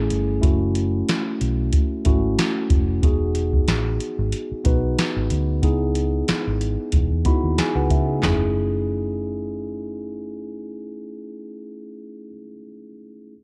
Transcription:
Already playing: A3 C#4 E4 G#4
0.10 G1, closed hi-hat
0.41 F#1 A3 C#4 E4 F#4, kick, closed hi-hat
0.75 closed hi-hat
1.09 snare, closed hi-hat
1.41 B1, closed hi-hat
1.73 kick, closed hi-hat
2.05 G#1 A3 C#4 E4 F#4, kick, closed hi-hat
2.39 snare, closed hi-hat
2.70 F1, kick, closed hi-hat
3.02 E1 B3 D#4 F#4 G#4, kick, closed hi-hat
3.35 closed hi-hat
3.53 kick
3.68 A1, snare, closed hi-hat
4.00 closed hi-hat
4.19 G#1
4.32 closed hi-hat
4.52 muted fingered electric bass stroke
4.64 B1 B3 D#4 F#4 B4, kick, closed hi-hat
4.99 snare, closed hi-hat
5.16 G#1
5.30 D2, closed hi-hat
5.62 C#2 B3 D#4 E4 G#4, kick, closed hi-hat
5.95 closed hi-hat
6.28 muted fingered electric bass stroke, snare, closed hi-hat
6.47 G#1
6.61 closed hi-hat
6.92 E1, kick, closed hi-hat
7.12 E2
7.25 B3 D#4 E4 F#4 B5, kick, closed hi-hat
7.44 D#2
7.58 D#4 G#4 G#5, muted fingered electric bass stroke, snare, closed hi-hat
7.75 C#2 F#4 B4 F#5
7.90 C#3 E5, kick, closed hi-hat
8.08 D#4 G#4
8.19 A3 C#4, clap, floor tom
8.23 F#1 E4 G#4, snare

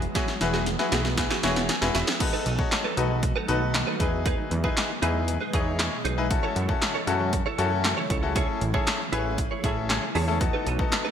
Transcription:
Already playing: E3 F#3 G#3 B3 G#4
0.02 muted clean electric guitar stroke, closed hi-hat
0.15 B3 E4 F#4 G#4 C#5, kick, snare, closed hi-hat
0.28 muted clean electric guitar stroke, snare
0.41 E1 E4 F#4 G#4 B4, muted clean electric guitar stroke, snare, closed hi-hat
0.53 B3 F#4 G#4, snare
0.66 muted clean electric guitar stroke, snare, closed hi-hat
0.79 E4 F#4 G#4 B4, muted clean electric guitar stroke, snare
0.92 B1 B3 F#4 G#4, snare, closed hi-hat
1.05 muted clean electric guitar stroke, snare
1.17 E4 F#4 G#4 B4, muted clean electric guitar stroke, kick, snare, closed hi-hat
1.30 B3 F#4 G#4, snare
1.43 E1 B3 E4 F#4 G#4 C#5, snare, closed hi-hat
1.56 muted clean electric guitar stroke, snare, closed hi-hat
1.69 G#5, muted clean electric guitar stroke, snare, closed hi-hat
1.82 E1 E4 F#4 G#4 B4, muted clean electric guitar stroke, snare
1.95 E1 B3 F#4 G#4 E5, snare, closed hi-hat
2.07 muted clean electric guitar stroke, snare, closed hi-hat
2.20 D#3 F#3 A3 B3 D#4 F#4 A4 B4, muted clean electric guitar stroke, kick, closed hi-hat, crash
2.33 D#4 A4 B4
2.46 B1 D#4 A4 B4, closed hi-hat
2.59 D#4 F#4 A4 C#5, muted clean electric guitar stroke, kick
2.72 muted clean electric guitar stroke, snare, clap, closed hi-hat
2.84 D#4 A4 B4
2.97 B1 D#4 F#4 A4 B4, muted clean electric guitar stroke, closed hi-hat
3.10 muted clean electric guitar stroke
3.23 muted clean electric guitar stroke, kick, closed hi-hat
3.36 D#4 A4 B4
3.48 B1 D#4 F#4 A4 B4, closed hi-hat
3.62 muted clean electric guitar stroke
3.74 muted clean electric guitar stroke, snare, clap, closed hi-hat
3.87 D#4 A4 B4
4.00 E2 B2 E3 G#3 D#4 E4 G#4 B4 D#5, kick, closed hi-hat
4.13 muted clean electric guitar stroke
4.25 D#4 G#4 B4, kick, closed hi-hat
4.38 muted clean electric guitar stroke
4.51 E2, muted clean electric guitar stroke, closed hi-hat
4.64 D#4 E4 G#4 B4, kick
4.77 muted clean electric guitar stroke, snare, clap, closed hi-hat
4.89 muted clean electric guitar stroke
5.02 E2 D#4 E4 G#4 B4, closed hi-hat
5.15 muted clean electric guitar stroke
5.28 muted clean electric guitar stroke, closed hi-hat
5.41 D#4 G#4 B4
5.53 E2 D#4 E4 G#4 B4 C#5, kick, closed hi-hat
5.66 muted clean electric guitar stroke
5.79 muted clean electric guitar stroke, snare, clap, closed hi-hat
5.92 muted clean electric guitar stroke
6.05 B1 D#4 G#4 B4, closed hi-hat
6.18 D#4 E4 G#4 B4, muted clean electric guitar stroke
6.30 C#3 F#3 A3 C#4 E4 F#4 A4, muted clean electric guitar stroke, kick, closed hi-hat
6.43 E4 A4 C#5
6.56 F#2 E4 A4 C#5, closed hi-hat
6.69 C#4 E4 F#4 A4, muted clean electric guitar stroke, kick
6.82 muted clean electric guitar stroke, snare, clap, closed hi-hat
6.94 E4 A4 C#5
7.07 F#2 C#4 E4 F#4 A4, muted clean electric guitar stroke, closed hi-hat
7.20 muted clean electric guitar stroke
7.33 muted clean electric guitar stroke, kick, closed hi-hat
7.46 E4 A4 C#5
7.58 F#2 C#4 E4 F#4 A4 C#5, closed hi-hat
7.72 muted clean electric guitar stroke
7.84 muted clean electric guitar stroke, snare, clap, closed hi-hat
7.97 E4 A4 C#5
8.10 C#2 E4 A4 C#5, kick, closed hi-hat
8.22 C#4 E4 F#4 A4, muted clean electric guitar stroke
8.35 A3 C#4 E4 G#4 A4 C#5, kick, closed hi-hat
8.48 muted clean electric guitar stroke
8.61 A1, muted clean electric guitar stroke, closed hi-hat
8.74 C#4 E4 G#4 A4 C#5, kick
8.87 muted clean electric guitar stroke, snare, clap, closed hi-hat
9.00 muted clean electric guitar stroke
9.12 A1 C#4 E4 G#4 B4 C#5, closed hi-hat
9.25 muted clean electric guitar stroke
9.38 muted clean electric guitar stroke, kick, closed hi-hat
9.51 E4 G#4 C#5
9.64 A1 C#4 E4 G#4 A4 C#5 E5, kick, closed hi-hat
9.77 muted clean electric guitar stroke
9.89 G#5, muted clean electric guitar stroke, snare, clap, closed hi-hat
10.02 muted clean electric guitar stroke
10.15 E2 E4 G#4 C#5 A5, open hi-hat
10.28 C#4 E4 G#4 A4, muted clean electric guitar stroke
10.40 D#3 F#3 B3 D#4 F#4 A4, muted clean electric guitar stroke, kick, closed hi-hat
10.53 D#4 A4 B4
10.66 B1 D#4 A4 B4, closed hi-hat
10.79 B3 D#4 F#4 A4, muted clean electric guitar stroke, kick
10.92 muted clean electric guitar stroke, snare, clap, closed hi-hat
11.05 D#4 A4 B4

